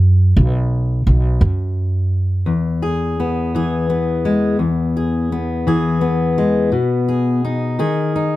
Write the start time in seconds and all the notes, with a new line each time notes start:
Already playing: F#2
0.37 B1
1.07 B1
1.41 F#2
2.46 E2
2.82 G#4
3.20 B3
3.55 E3 G#4
3.90 B3
4.25 G#3
4.59 E2
4.97 G#4
5.32 B3
5.67 E3 G#4
6.01 B3
6.38 G#3
6.72 B2
7.08 G#4
7.45 D#4
7.79 D#3 G#4
8.16 D#4